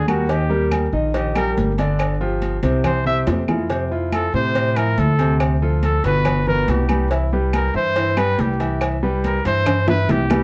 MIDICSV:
0, 0, Header, 1, 5, 480
1, 0, Start_track
1, 0, Key_signature, 0, "major"
1, 0, Tempo, 425834
1, 333, Time_signature, 4, 2, 24, 8
1, 11760, End_track
2, 0, Start_track
2, 0, Title_t, "Trumpet"
2, 0, Program_c, 0, 56
2, 103, Note_on_c, 0, 66, 82
2, 347, Note_on_c, 0, 67, 92
2, 364, Note_off_c, 0, 66, 0
2, 820, Note_off_c, 0, 67, 0
2, 1304, Note_on_c, 0, 67, 76
2, 1522, Note_off_c, 0, 67, 0
2, 1546, Note_on_c, 0, 70, 99
2, 1763, Note_off_c, 0, 70, 0
2, 3224, Note_on_c, 0, 72, 85
2, 3441, Note_off_c, 0, 72, 0
2, 3460, Note_on_c, 0, 76, 106
2, 3601, Note_off_c, 0, 76, 0
2, 4666, Note_on_c, 0, 69, 81
2, 4882, Note_off_c, 0, 69, 0
2, 4906, Note_on_c, 0, 72, 101
2, 5382, Note_on_c, 0, 70, 94
2, 5399, Note_off_c, 0, 72, 0
2, 5626, Note_on_c, 0, 69, 87
2, 5643, Note_off_c, 0, 70, 0
2, 6098, Note_off_c, 0, 69, 0
2, 6588, Note_on_c, 0, 69, 95
2, 6803, Note_off_c, 0, 69, 0
2, 6833, Note_on_c, 0, 71, 110
2, 7269, Note_off_c, 0, 71, 0
2, 7309, Note_on_c, 0, 70, 108
2, 7557, Note_on_c, 0, 67, 80
2, 7574, Note_off_c, 0, 70, 0
2, 8023, Note_off_c, 0, 67, 0
2, 8515, Note_on_c, 0, 70, 90
2, 8727, Note_off_c, 0, 70, 0
2, 8748, Note_on_c, 0, 72, 117
2, 9228, Note_on_c, 0, 71, 111
2, 9245, Note_off_c, 0, 72, 0
2, 9474, Note_on_c, 0, 67, 81
2, 9490, Note_off_c, 0, 71, 0
2, 9943, Note_off_c, 0, 67, 0
2, 10438, Note_on_c, 0, 70, 88
2, 10650, Note_off_c, 0, 70, 0
2, 10672, Note_on_c, 0, 72, 113
2, 11111, Note_off_c, 0, 72, 0
2, 11150, Note_on_c, 0, 71, 112
2, 11395, Note_on_c, 0, 67, 96
2, 11412, Note_off_c, 0, 71, 0
2, 11760, Note_off_c, 0, 67, 0
2, 11760, End_track
3, 0, Start_track
3, 0, Title_t, "Grand piano"
3, 0, Program_c, 1, 0
3, 86, Note_on_c, 1, 55, 69
3, 89, Note_on_c, 1, 67, 75
3, 94, Note_on_c, 1, 70, 73
3, 286, Note_off_c, 1, 55, 0
3, 288, Note_off_c, 1, 67, 0
3, 290, Note_off_c, 1, 70, 0
3, 325, Note_on_c, 1, 51, 80
3, 328, Note_on_c, 1, 63, 74
3, 329, Note_on_c, 1, 75, 74
3, 525, Note_off_c, 1, 51, 0
3, 527, Note_off_c, 1, 63, 0
3, 527, Note_off_c, 1, 75, 0
3, 562, Note_on_c, 1, 55, 82
3, 566, Note_on_c, 1, 67, 83
3, 568, Note_on_c, 1, 70, 85
3, 960, Note_off_c, 1, 55, 0
3, 962, Note_off_c, 1, 67, 0
3, 963, Note_off_c, 1, 70, 0
3, 1050, Note_on_c, 1, 51, 84
3, 1053, Note_on_c, 1, 63, 90
3, 1056, Note_on_c, 1, 75, 85
3, 1248, Note_off_c, 1, 51, 0
3, 1250, Note_off_c, 1, 63, 0
3, 1252, Note_off_c, 1, 75, 0
3, 1288, Note_on_c, 1, 51, 84
3, 1289, Note_on_c, 1, 63, 84
3, 1295, Note_on_c, 1, 75, 86
3, 1487, Note_off_c, 1, 51, 0
3, 1487, Note_off_c, 1, 63, 0
3, 1491, Note_off_c, 1, 75, 0
3, 1529, Note_on_c, 1, 55, 78
3, 1530, Note_on_c, 1, 67, 78
3, 1535, Note_on_c, 1, 70, 79
3, 1924, Note_off_c, 1, 55, 0
3, 1924, Note_off_c, 1, 67, 0
3, 1928, Note_off_c, 1, 70, 0
3, 2013, Note_on_c, 1, 50, 86
3, 2014, Note_on_c, 1, 62, 88
3, 2020, Note_on_c, 1, 74, 89
3, 2406, Note_off_c, 1, 50, 0
3, 2407, Note_off_c, 1, 62, 0
3, 2410, Note_off_c, 1, 74, 0
3, 2487, Note_on_c, 1, 53, 91
3, 2491, Note_on_c, 1, 65, 91
3, 2495, Note_on_c, 1, 67, 79
3, 2883, Note_off_c, 1, 53, 0
3, 2885, Note_off_c, 1, 65, 0
3, 2887, Note_off_c, 1, 67, 0
3, 2965, Note_on_c, 1, 48, 94
3, 2969, Note_on_c, 1, 60, 80
3, 2974, Note_on_c, 1, 72, 83
3, 3361, Note_off_c, 1, 48, 0
3, 3363, Note_off_c, 1, 60, 0
3, 3367, Note_off_c, 1, 72, 0
3, 3446, Note_on_c, 1, 48, 84
3, 3448, Note_on_c, 1, 60, 91
3, 3453, Note_on_c, 1, 72, 98
3, 3842, Note_off_c, 1, 48, 0
3, 3843, Note_off_c, 1, 60, 0
3, 3846, Note_off_c, 1, 72, 0
3, 3929, Note_on_c, 1, 52, 75
3, 3934, Note_on_c, 1, 64, 76
3, 3935, Note_on_c, 1, 65, 76
3, 4126, Note_off_c, 1, 52, 0
3, 4130, Note_off_c, 1, 64, 0
3, 4130, Note_off_c, 1, 65, 0
3, 4166, Note_on_c, 1, 48, 74
3, 4167, Note_on_c, 1, 60, 70
3, 4173, Note_on_c, 1, 72, 77
3, 4365, Note_off_c, 1, 48, 0
3, 4365, Note_off_c, 1, 60, 0
3, 4369, Note_off_c, 1, 72, 0
3, 4410, Note_on_c, 1, 53, 81
3, 4412, Note_on_c, 1, 64, 85
3, 4418, Note_on_c, 1, 65, 81
3, 4804, Note_off_c, 1, 53, 0
3, 4805, Note_off_c, 1, 64, 0
3, 4808, Note_off_c, 1, 65, 0
3, 4889, Note_on_c, 1, 48, 81
3, 4892, Note_on_c, 1, 60, 76
3, 4892, Note_on_c, 1, 72, 94
3, 5086, Note_off_c, 1, 48, 0
3, 5088, Note_off_c, 1, 60, 0
3, 5088, Note_off_c, 1, 72, 0
3, 5128, Note_on_c, 1, 48, 82
3, 5130, Note_on_c, 1, 60, 87
3, 5137, Note_on_c, 1, 72, 79
3, 5326, Note_off_c, 1, 48, 0
3, 5327, Note_off_c, 1, 60, 0
3, 5331, Note_off_c, 1, 72, 0
3, 5375, Note_on_c, 1, 53, 74
3, 5377, Note_on_c, 1, 64, 86
3, 5379, Note_on_c, 1, 65, 80
3, 5767, Note_off_c, 1, 53, 0
3, 5768, Note_off_c, 1, 64, 0
3, 5769, Note_off_c, 1, 65, 0
3, 5848, Note_on_c, 1, 48, 88
3, 5851, Note_on_c, 1, 60, 84
3, 5854, Note_on_c, 1, 72, 78
3, 6242, Note_off_c, 1, 48, 0
3, 6244, Note_off_c, 1, 60, 0
3, 6246, Note_off_c, 1, 72, 0
3, 6335, Note_on_c, 1, 53, 83
3, 6339, Note_on_c, 1, 65, 91
3, 6343, Note_on_c, 1, 69, 85
3, 6727, Note_off_c, 1, 53, 0
3, 6729, Note_off_c, 1, 65, 0
3, 6731, Note_off_c, 1, 69, 0
3, 6812, Note_on_c, 1, 47, 90
3, 6817, Note_on_c, 1, 59, 92
3, 6818, Note_on_c, 1, 71, 91
3, 7205, Note_off_c, 1, 47, 0
3, 7208, Note_off_c, 1, 59, 0
3, 7208, Note_off_c, 1, 71, 0
3, 7295, Note_on_c, 1, 47, 92
3, 7300, Note_on_c, 1, 59, 92
3, 7303, Note_on_c, 1, 71, 84
3, 7687, Note_off_c, 1, 47, 0
3, 7690, Note_off_c, 1, 59, 0
3, 7692, Note_off_c, 1, 71, 0
3, 7770, Note_on_c, 1, 55, 75
3, 7774, Note_on_c, 1, 67, 79
3, 7776, Note_on_c, 1, 71, 81
3, 7967, Note_off_c, 1, 55, 0
3, 7969, Note_off_c, 1, 67, 0
3, 7971, Note_off_c, 1, 71, 0
3, 8014, Note_on_c, 1, 52, 76
3, 8018, Note_on_c, 1, 64, 90
3, 8024, Note_on_c, 1, 76, 81
3, 8209, Note_off_c, 1, 52, 0
3, 8212, Note_off_c, 1, 64, 0
3, 8215, Note_off_c, 1, 76, 0
3, 8259, Note_on_c, 1, 55, 81
3, 8259, Note_on_c, 1, 67, 90
3, 8265, Note_on_c, 1, 71, 80
3, 8649, Note_off_c, 1, 55, 0
3, 8649, Note_off_c, 1, 67, 0
3, 8653, Note_off_c, 1, 71, 0
3, 8730, Note_on_c, 1, 52, 80
3, 8731, Note_on_c, 1, 64, 96
3, 8735, Note_on_c, 1, 76, 97
3, 8927, Note_off_c, 1, 52, 0
3, 8928, Note_off_c, 1, 64, 0
3, 8930, Note_off_c, 1, 76, 0
3, 8971, Note_on_c, 1, 52, 86
3, 8977, Note_on_c, 1, 64, 87
3, 8981, Note_on_c, 1, 76, 86
3, 9168, Note_off_c, 1, 52, 0
3, 9171, Note_off_c, 1, 64, 0
3, 9173, Note_off_c, 1, 76, 0
3, 9211, Note_on_c, 1, 55, 89
3, 9217, Note_on_c, 1, 67, 80
3, 9218, Note_on_c, 1, 71, 89
3, 9605, Note_off_c, 1, 55, 0
3, 9608, Note_off_c, 1, 67, 0
3, 9609, Note_off_c, 1, 71, 0
3, 9693, Note_on_c, 1, 52, 99
3, 9696, Note_on_c, 1, 64, 85
3, 9700, Note_on_c, 1, 76, 90
3, 10086, Note_off_c, 1, 52, 0
3, 10088, Note_off_c, 1, 64, 0
3, 10091, Note_off_c, 1, 76, 0
3, 10172, Note_on_c, 1, 55, 90
3, 10177, Note_on_c, 1, 67, 88
3, 10181, Note_on_c, 1, 71, 90
3, 10566, Note_off_c, 1, 55, 0
3, 10569, Note_off_c, 1, 67, 0
3, 10572, Note_off_c, 1, 71, 0
3, 10650, Note_on_c, 1, 52, 84
3, 10655, Note_on_c, 1, 64, 85
3, 10657, Note_on_c, 1, 76, 87
3, 11046, Note_off_c, 1, 52, 0
3, 11049, Note_off_c, 1, 64, 0
3, 11050, Note_off_c, 1, 76, 0
3, 11126, Note_on_c, 1, 52, 98
3, 11130, Note_on_c, 1, 64, 95
3, 11134, Note_on_c, 1, 76, 100
3, 11524, Note_off_c, 1, 52, 0
3, 11527, Note_off_c, 1, 64, 0
3, 11529, Note_off_c, 1, 76, 0
3, 11617, Note_on_c, 1, 55, 80
3, 11617, Note_on_c, 1, 67, 86
3, 11624, Note_on_c, 1, 71, 84
3, 11760, Note_off_c, 1, 55, 0
3, 11760, Note_off_c, 1, 67, 0
3, 11760, Note_off_c, 1, 71, 0
3, 11760, End_track
4, 0, Start_track
4, 0, Title_t, "Upright bass"
4, 0, Program_c, 2, 32
4, 0, Note_on_c, 2, 39, 96
4, 982, Note_off_c, 2, 39, 0
4, 1045, Note_on_c, 2, 34, 93
4, 1724, Note_off_c, 2, 34, 0
4, 1768, Note_on_c, 2, 31, 91
4, 2901, Note_off_c, 2, 31, 0
4, 2964, Note_on_c, 2, 36, 98
4, 3643, Note_off_c, 2, 36, 0
4, 3688, Note_on_c, 2, 41, 91
4, 4820, Note_off_c, 2, 41, 0
4, 4887, Note_on_c, 2, 45, 100
4, 5563, Note_off_c, 2, 45, 0
4, 5609, Note_on_c, 2, 38, 94
4, 6740, Note_off_c, 2, 38, 0
4, 6805, Note_on_c, 2, 31, 96
4, 7482, Note_off_c, 2, 31, 0
4, 7531, Note_on_c, 2, 36, 96
4, 8662, Note_off_c, 2, 36, 0
4, 8725, Note_on_c, 2, 43, 92
4, 9403, Note_off_c, 2, 43, 0
4, 9451, Note_on_c, 2, 36, 96
4, 10584, Note_off_c, 2, 36, 0
4, 10649, Note_on_c, 2, 43, 99
4, 11328, Note_off_c, 2, 43, 0
4, 11372, Note_on_c, 2, 36, 103
4, 11760, Note_off_c, 2, 36, 0
4, 11760, End_track
5, 0, Start_track
5, 0, Title_t, "Drums"
5, 91, Note_on_c, 9, 68, 116
5, 92, Note_on_c, 9, 75, 71
5, 95, Note_on_c, 9, 63, 86
5, 203, Note_off_c, 9, 68, 0
5, 204, Note_off_c, 9, 75, 0
5, 208, Note_off_c, 9, 63, 0
5, 329, Note_on_c, 9, 68, 83
5, 330, Note_on_c, 9, 56, 115
5, 442, Note_off_c, 9, 68, 0
5, 443, Note_off_c, 9, 56, 0
5, 573, Note_on_c, 9, 63, 39
5, 686, Note_off_c, 9, 63, 0
5, 808, Note_on_c, 9, 75, 65
5, 811, Note_on_c, 9, 68, 110
5, 813, Note_on_c, 9, 56, 66
5, 813, Note_on_c, 9, 63, 89
5, 921, Note_off_c, 9, 75, 0
5, 923, Note_off_c, 9, 68, 0
5, 925, Note_off_c, 9, 56, 0
5, 926, Note_off_c, 9, 63, 0
5, 1289, Note_on_c, 9, 56, 112
5, 1289, Note_on_c, 9, 68, 70
5, 1292, Note_on_c, 9, 63, 33
5, 1401, Note_off_c, 9, 68, 0
5, 1402, Note_off_c, 9, 56, 0
5, 1405, Note_off_c, 9, 63, 0
5, 1526, Note_on_c, 9, 68, 111
5, 1529, Note_on_c, 9, 75, 73
5, 1532, Note_on_c, 9, 56, 77
5, 1534, Note_on_c, 9, 63, 31
5, 1639, Note_off_c, 9, 68, 0
5, 1642, Note_off_c, 9, 75, 0
5, 1645, Note_off_c, 9, 56, 0
5, 1646, Note_off_c, 9, 63, 0
5, 1775, Note_on_c, 9, 56, 79
5, 1775, Note_on_c, 9, 63, 94
5, 1887, Note_off_c, 9, 56, 0
5, 1888, Note_off_c, 9, 63, 0
5, 2006, Note_on_c, 9, 68, 93
5, 2011, Note_on_c, 9, 56, 77
5, 2119, Note_off_c, 9, 68, 0
5, 2124, Note_off_c, 9, 56, 0
5, 2244, Note_on_c, 9, 68, 105
5, 2249, Note_on_c, 9, 75, 71
5, 2252, Note_on_c, 9, 56, 107
5, 2256, Note_on_c, 9, 63, 37
5, 2356, Note_off_c, 9, 68, 0
5, 2362, Note_off_c, 9, 75, 0
5, 2365, Note_off_c, 9, 56, 0
5, 2369, Note_off_c, 9, 63, 0
5, 2494, Note_on_c, 9, 63, 38
5, 2607, Note_off_c, 9, 63, 0
5, 2727, Note_on_c, 9, 68, 72
5, 2731, Note_on_c, 9, 56, 57
5, 2732, Note_on_c, 9, 63, 54
5, 2840, Note_off_c, 9, 68, 0
5, 2844, Note_off_c, 9, 56, 0
5, 2844, Note_off_c, 9, 63, 0
5, 2965, Note_on_c, 9, 68, 72
5, 2969, Note_on_c, 9, 63, 37
5, 2970, Note_on_c, 9, 56, 78
5, 3077, Note_off_c, 9, 68, 0
5, 3082, Note_off_c, 9, 63, 0
5, 3083, Note_off_c, 9, 56, 0
5, 3205, Note_on_c, 9, 68, 108
5, 3206, Note_on_c, 9, 75, 67
5, 3207, Note_on_c, 9, 56, 111
5, 3211, Note_on_c, 9, 63, 34
5, 3211, Note_on_c, 9, 64, 83
5, 3318, Note_off_c, 9, 68, 0
5, 3319, Note_off_c, 9, 75, 0
5, 3320, Note_off_c, 9, 56, 0
5, 3324, Note_off_c, 9, 63, 0
5, 3324, Note_off_c, 9, 64, 0
5, 3454, Note_on_c, 9, 63, 33
5, 3567, Note_off_c, 9, 63, 0
5, 3685, Note_on_c, 9, 66, 81
5, 3685, Note_on_c, 9, 68, 77
5, 3691, Note_on_c, 9, 56, 75
5, 3691, Note_on_c, 9, 60, 98
5, 3695, Note_on_c, 9, 63, 88
5, 3798, Note_off_c, 9, 66, 0
5, 3798, Note_off_c, 9, 68, 0
5, 3803, Note_off_c, 9, 56, 0
5, 3803, Note_off_c, 9, 60, 0
5, 3807, Note_off_c, 9, 63, 0
5, 3925, Note_on_c, 9, 75, 71
5, 3930, Note_on_c, 9, 61, 85
5, 3930, Note_on_c, 9, 68, 122
5, 3932, Note_on_c, 9, 63, 79
5, 4038, Note_off_c, 9, 75, 0
5, 4042, Note_off_c, 9, 68, 0
5, 4043, Note_off_c, 9, 61, 0
5, 4045, Note_off_c, 9, 63, 0
5, 4167, Note_on_c, 9, 68, 91
5, 4171, Note_on_c, 9, 56, 110
5, 4172, Note_on_c, 9, 63, 39
5, 4280, Note_off_c, 9, 68, 0
5, 4284, Note_off_c, 9, 56, 0
5, 4285, Note_off_c, 9, 63, 0
5, 4412, Note_on_c, 9, 63, 40
5, 4525, Note_off_c, 9, 63, 0
5, 4649, Note_on_c, 9, 63, 85
5, 4650, Note_on_c, 9, 75, 70
5, 4651, Note_on_c, 9, 68, 108
5, 4654, Note_on_c, 9, 56, 58
5, 4762, Note_off_c, 9, 63, 0
5, 4763, Note_off_c, 9, 75, 0
5, 4764, Note_off_c, 9, 68, 0
5, 4767, Note_off_c, 9, 56, 0
5, 5131, Note_on_c, 9, 68, 70
5, 5132, Note_on_c, 9, 63, 37
5, 5134, Note_on_c, 9, 56, 114
5, 5244, Note_off_c, 9, 68, 0
5, 5245, Note_off_c, 9, 63, 0
5, 5247, Note_off_c, 9, 56, 0
5, 5369, Note_on_c, 9, 68, 108
5, 5371, Note_on_c, 9, 63, 35
5, 5371, Note_on_c, 9, 75, 69
5, 5372, Note_on_c, 9, 56, 81
5, 5482, Note_off_c, 9, 68, 0
5, 5484, Note_off_c, 9, 56, 0
5, 5484, Note_off_c, 9, 63, 0
5, 5484, Note_off_c, 9, 75, 0
5, 5611, Note_on_c, 9, 63, 94
5, 5613, Note_on_c, 9, 56, 79
5, 5724, Note_off_c, 9, 63, 0
5, 5726, Note_off_c, 9, 56, 0
5, 5849, Note_on_c, 9, 68, 94
5, 5853, Note_on_c, 9, 56, 75
5, 5962, Note_off_c, 9, 68, 0
5, 5966, Note_off_c, 9, 56, 0
5, 6089, Note_on_c, 9, 75, 68
5, 6090, Note_on_c, 9, 68, 113
5, 6092, Note_on_c, 9, 56, 112
5, 6202, Note_off_c, 9, 75, 0
5, 6203, Note_off_c, 9, 68, 0
5, 6204, Note_off_c, 9, 56, 0
5, 6329, Note_on_c, 9, 63, 42
5, 6441, Note_off_c, 9, 63, 0
5, 6569, Note_on_c, 9, 63, 62
5, 6569, Note_on_c, 9, 68, 77
5, 6571, Note_on_c, 9, 56, 64
5, 6681, Note_off_c, 9, 68, 0
5, 6682, Note_off_c, 9, 63, 0
5, 6684, Note_off_c, 9, 56, 0
5, 6809, Note_on_c, 9, 56, 71
5, 6809, Note_on_c, 9, 63, 36
5, 6810, Note_on_c, 9, 68, 76
5, 6922, Note_off_c, 9, 56, 0
5, 6922, Note_off_c, 9, 63, 0
5, 6923, Note_off_c, 9, 68, 0
5, 7045, Note_on_c, 9, 68, 115
5, 7046, Note_on_c, 9, 75, 64
5, 7051, Note_on_c, 9, 63, 36
5, 7051, Note_on_c, 9, 64, 77
5, 7052, Note_on_c, 9, 56, 112
5, 7158, Note_off_c, 9, 68, 0
5, 7159, Note_off_c, 9, 75, 0
5, 7164, Note_off_c, 9, 56, 0
5, 7164, Note_off_c, 9, 63, 0
5, 7164, Note_off_c, 9, 64, 0
5, 7292, Note_on_c, 9, 63, 34
5, 7292, Note_on_c, 9, 64, 68
5, 7405, Note_off_c, 9, 63, 0
5, 7405, Note_off_c, 9, 64, 0
5, 7530, Note_on_c, 9, 56, 75
5, 7532, Note_on_c, 9, 63, 87
5, 7533, Note_on_c, 9, 68, 80
5, 7643, Note_off_c, 9, 56, 0
5, 7645, Note_off_c, 9, 63, 0
5, 7645, Note_off_c, 9, 68, 0
5, 7764, Note_on_c, 9, 75, 68
5, 7769, Note_on_c, 9, 68, 116
5, 7772, Note_on_c, 9, 63, 89
5, 7877, Note_off_c, 9, 75, 0
5, 7881, Note_off_c, 9, 68, 0
5, 7885, Note_off_c, 9, 63, 0
5, 8011, Note_on_c, 9, 56, 112
5, 8011, Note_on_c, 9, 68, 80
5, 8124, Note_off_c, 9, 56, 0
5, 8124, Note_off_c, 9, 68, 0
5, 8252, Note_on_c, 9, 63, 36
5, 8365, Note_off_c, 9, 63, 0
5, 8490, Note_on_c, 9, 75, 69
5, 8491, Note_on_c, 9, 68, 112
5, 8492, Note_on_c, 9, 56, 70
5, 8496, Note_on_c, 9, 63, 87
5, 8603, Note_off_c, 9, 68, 0
5, 8603, Note_off_c, 9, 75, 0
5, 8605, Note_off_c, 9, 56, 0
5, 8608, Note_off_c, 9, 63, 0
5, 8972, Note_on_c, 9, 56, 105
5, 8976, Note_on_c, 9, 68, 75
5, 8977, Note_on_c, 9, 63, 35
5, 9085, Note_off_c, 9, 56, 0
5, 9088, Note_off_c, 9, 68, 0
5, 9089, Note_off_c, 9, 63, 0
5, 9210, Note_on_c, 9, 75, 70
5, 9212, Note_on_c, 9, 68, 106
5, 9215, Note_on_c, 9, 56, 75
5, 9322, Note_off_c, 9, 75, 0
5, 9325, Note_off_c, 9, 68, 0
5, 9327, Note_off_c, 9, 56, 0
5, 9455, Note_on_c, 9, 56, 79
5, 9455, Note_on_c, 9, 63, 101
5, 9567, Note_off_c, 9, 56, 0
5, 9568, Note_off_c, 9, 63, 0
5, 9693, Note_on_c, 9, 68, 88
5, 9695, Note_on_c, 9, 56, 68
5, 9806, Note_off_c, 9, 68, 0
5, 9808, Note_off_c, 9, 56, 0
5, 9927, Note_on_c, 9, 75, 72
5, 9931, Note_on_c, 9, 68, 107
5, 9933, Note_on_c, 9, 56, 115
5, 9936, Note_on_c, 9, 63, 39
5, 10040, Note_off_c, 9, 75, 0
5, 10044, Note_off_c, 9, 68, 0
5, 10045, Note_off_c, 9, 56, 0
5, 10048, Note_off_c, 9, 63, 0
5, 10175, Note_on_c, 9, 63, 37
5, 10288, Note_off_c, 9, 63, 0
5, 10413, Note_on_c, 9, 68, 74
5, 10416, Note_on_c, 9, 56, 65
5, 10419, Note_on_c, 9, 63, 63
5, 10526, Note_off_c, 9, 68, 0
5, 10529, Note_off_c, 9, 56, 0
5, 10531, Note_off_c, 9, 63, 0
5, 10653, Note_on_c, 9, 68, 79
5, 10654, Note_on_c, 9, 56, 76
5, 10658, Note_on_c, 9, 63, 37
5, 10765, Note_off_c, 9, 68, 0
5, 10767, Note_off_c, 9, 56, 0
5, 10771, Note_off_c, 9, 63, 0
5, 10889, Note_on_c, 9, 75, 70
5, 10893, Note_on_c, 9, 56, 104
5, 10895, Note_on_c, 9, 65, 105
5, 10895, Note_on_c, 9, 68, 117
5, 10899, Note_on_c, 9, 63, 34
5, 10899, Note_on_c, 9, 64, 80
5, 11002, Note_off_c, 9, 75, 0
5, 11006, Note_off_c, 9, 56, 0
5, 11007, Note_off_c, 9, 65, 0
5, 11007, Note_off_c, 9, 68, 0
5, 11011, Note_off_c, 9, 63, 0
5, 11011, Note_off_c, 9, 64, 0
5, 11134, Note_on_c, 9, 65, 92
5, 11135, Note_on_c, 9, 60, 117
5, 11138, Note_on_c, 9, 63, 33
5, 11138, Note_on_c, 9, 64, 71
5, 11247, Note_off_c, 9, 65, 0
5, 11248, Note_off_c, 9, 60, 0
5, 11251, Note_off_c, 9, 63, 0
5, 11251, Note_off_c, 9, 64, 0
5, 11376, Note_on_c, 9, 56, 77
5, 11376, Note_on_c, 9, 61, 83
5, 11376, Note_on_c, 9, 66, 83
5, 11376, Note_on_c, 9, 68, 71
5, 11378, Note_on_c, 9, 63, 90
5, 11489, Note_off_c, 9, 56, 0
5, 11489, Note_off_c, 9, 61, 0
5, 11489, Note_off_c, 9, 66, 0
5, 11489, Note_off_c, 9, 68, 0
5, 11490, Note_off_c, 9, 63, 0
5, 11609, Note_on_c, 9, 75, 69
5, 11615, Note_on_c, 9, 61, 96
5, 11616, Note_on_c, 9, 63, 96
5, 11616, Note_on_c, 9, 66, 94
5, 11616, Note_on_c, 9, 68, 116
5, 11722, Note_off_c, 9, 75, 0
5, 11728, Note_off_c, 9, 61, 0
5, 11728, Note_off_c, 9, 66, 0
5, 11728, Note_off_c, 9, 68, 0
5, 11729, Note_off_c, 9, 63, 0
5, 11760, End_track
0, 0, End_of_file